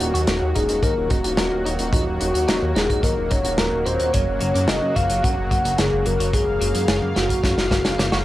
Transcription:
Already playing: D#3 F#3 A#3 F#4
0.00 D#1 D#4, closed hi-hat
0.14 D#2 F#4, closed hi-hat
0.27 D#1 A#4, snare, closed hi-hat
0.42 D#2
0.55 D#1 D#4 G#4, kick, closed hi-hat
0.69 D#1 D#4, closed hi-hat
0.83 D#2 D#4 A#4, kick, closed hi-hat
0.97 D#1
1.10 D#1 D#4 F#4, kick, closed hi-hat
1.24 D#1 F#4, closed hi-hat
1.37 D#1 A#4, snare, closed hi-hat
1.52 D#1
1.65 D#1 D#4, closed hi-hat
1.79 D#1 D#4, closed hi-hat
1.93 D#1 D#4 F#4, kick, closed hi-hat
2.07 D#1
2.21 D#1 D#4, closed hi-hat
2.34 D#2 F#4, closed hi-hat
2.48 D#1 A#4, snare, closed hi-hat
2.62 D#2
2.75 D#1 D#4 G#4, snare, closed hi-hat
2.89 D#1 D#4, kick, closed hi-hat
3.03 D#2 D#4 A#4, kick, closed hi-hat
3.17 D#1
3.31 D#1 D#4 C#5, kick, closed hi-hat
3.44 D#1 F#4, closed hi-hat
3.58 D#1 A#4, snare, closed hi-hat
3.72 D#1
3.86 D#1 D#4 C5, closed hi-hat
3.99 D#1 D#4, closed hi-hat
4.13 F#1 C#3 F#3 F#4 C#5, kick, closed hi-hat
4.27 F#1
4.41 F#1 F#3, closed hi-hat
4.54 F#2 A#3, closed hi-hat
4.68 F#1 C#4 D#5, snare, closed hi-hat
4.82 F#2
4.96 F#1 F#3 F5, kick, closed hi-hat
5.09 F#1 F#3, closed hi-hat
5.23 F#2 F#3 F#5, kick, closed hi-hat
5.37 F#1
5.51 F#1 F#3, kick, closed hi-hat
5.65 F#1 A#3, closed hi-hat
5.78 F#1 C#4 G#4, snare, closed hi-hat
5.93 F#1
6.06 F#1 F#3 A#4, closed hi-hat
6.20 F#1 F#3, closed hi-hat
6.33 F#1 F#3 G#4 F5, kick, closed hi-hat
6.48 F#1
6.61 F#1 F#3, closed hi-hat
6.75 F#2 A#3, closed hi-hat
6.88 F#1 C#4, snare, closed hi-hat
7.02 F#2
7.16 F#1 F#3 F#4, snare, closed hi-hat
7.29 F#1 F#3, kick, closed hi-hat
7.43 F#2 F#3, kick, snare, closed hi-hat
7.57 F#1, snare
7.71 F#1 F#3, kick, snare, closed hi-hat
7.85 F#1 C#4, snare, closed hi-hat
7.98 F#1 A#3, snare, closed hi-hat
8.12 F#1 F#4, snare

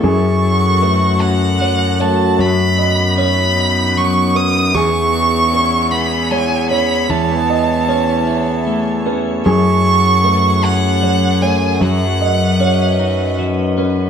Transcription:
Already playing: C#4
0.04 F#2 A3 F#4 G#4 F#5 C#6
0.82 A3 B4
1.20 C#4 F#5
1.60 F#3 C#5
2.00 A3 C#5 A5
2.38 F#2 F#3 B3 D#4 C#5 B5
2.78 D#5
3.18 C#4 C#5 B5
3.57 D#4
3.97 F#3 C#6
4.35 C#4 B4 D#6
4.74 E2 G#3 E4 G#4 C#6
5.53 C#4 B4
5.91 B3 B5
6.31 G#3 C#5 G#5
6.70 C#4 C#5 B5
7.10 E2 A3 A5
7.49 D#5
7.88 C#4 C#5
8.27 E4
8.67 A3
9.06 C#4 B4
9.45 F#2 G#4 F#5 C#6
10.24 A3 B4
10.63 C#4 F#5
11.02 F#3 C#5
11.42 A3 C#5 G#5
11.81 F#2 F#3 C#4 B4 D#5 F#5
12.21 D#5
12.60 C#4 C#5
12.99 D#4
13.39 F#3
13.78 C#4 B4

